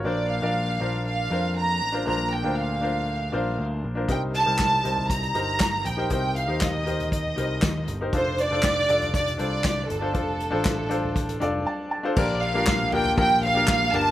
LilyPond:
<<
  \new Staff \with { instrumentName = "Violin section" } { \time 4/4 \key bes \major \tempo 4 = 119 d''8 f''4. f''4 bes''4 | bes''8 g''8 f''2 r4 | g''8 a''4. bes''4. g''8 | g''8 f''8 ees''4 ees''4. r8 |
c''8 d''4. d''8 d''4 a'8~ | a'2. r4 | d''8 f''4 g''8 g''8 f''4 a''8 | }
  \new Staff \with { instrumentName = "Grand piano" } { \time 4/4 \key bes \major <d' f' bes' c''>8 r16 <d' f' bes' d''>8 r16 <d' f' bes' c''>8. r16 <d' f' bes' c''>4 r16 <d' f' bes' c''>16 | <d' f' bes' c''>8 r16 <d' f' bes' c''>8 r16 <d' f' bes' c''>8. r16 <d' f' bes' c''>4 r16 <d' f' bes' c''>16 | <ees' g' bes' c''>8 r16 <ees' g' bes' c''>8 r16 <ees' g' bes' c''>8. r16 <ees' g' bes' c''>4 r16 <ees' g' bes' c''>16 | <ees' g' bes' c''>8 r16 <ees' g' bes' c''>8 r16 <ees' g' bes' c''>8. r16 <ees' g' bes' c''>4 r16 <ees' g' bes' c''>16 |
<d' f' a' c''>8 r16 <d' f' a' c''>8 r16 <d' f' a' d''>8. r16 <d' f' a' c''>4 r16 <d' f' a' c''>16 | <d' f' a' c''>8 r16 <d' f' a' c''>8 r16 <d' f' a' c''>8. r16 <d' f' a' d''>4 r16 <d' f' a' c''>16 | <bes d' f' g' bes'>8 r16 <bes d' f' g' bes'>8 r16 <bes d' f' g' bes'>16 r16 <bes d' f' g' bes'>8 r16 <bes d' f' g' bes'>8 r16 <bes d' f' g' bes'>16 r16 | }
  \new Staff \with { instrumentName = "Grand piano" } { \clef bass \time 4/4 \key bes \major bes,4. r2 r8 | bes,4. r2 r8 | c4. r2 r8 | c4. r2 r8 |
r1 | r2 r8 f''8 a''8 a''8 | bes,4. r2 r8 | }
  \new Staff \with { instrumentName = "Picked electric bass" } { \clef bass \time 4/4 \key bes \major bes,,8. bes,,8. bes,,4 f,4 a,,8 | bes,,8. d,4.~ d,16 bes,,8 d,8 bes,,8 | c,8. c,8. c,4 g,,4 bes,,8 | c,8. ees,4.~ ees,16 c,8 ees,8 g,,8 |
f,,8. f,,8. f,,4 c,4 g,,8 | f,,8. a,,4.~ a,,16 f,,8 r4 | bes,,2 bes,,4. g,,8 | }
  \new DrumStaff \with { instrumentName = "Drums" } \drummode { \time 4/4 r4 r4 r4 r4 | r4 r4 r4 r4 | <hh bd>8 hh8 <hc hh bd sn>8 hh16 tomfh16 <hh bd>16 hh16 hh8 <hc hh bd sn>8 <hh tomfh>8 | <hh bd>8 hh8 <hc hh bd sn>8 <hh tomfh>16 <hh tomfh>16 <hh bd>8 hh8 <hc hh bd sn>8 <hh tomfh>8 |
<hh bd>8 hh8 <hc hh bd sn>8 hh16 <hh tomfh>16 <hh bd>16 hh16 hh8 <hc hh bd sn>8 <hh tomfh>8 | <hh bd>8 hh8 <hc hh bd sn>8 hh16 tomfh16 <hh bd>16 hh16 hh8 r4 | <cymc bd>8 cymr8 <hc bd cymr sn>8 <cymr tomfh>16 tomfh16 <bd cymr>8 cymr8 <hc bd cymr sn>8 <cymr tomfh>8 | }
>>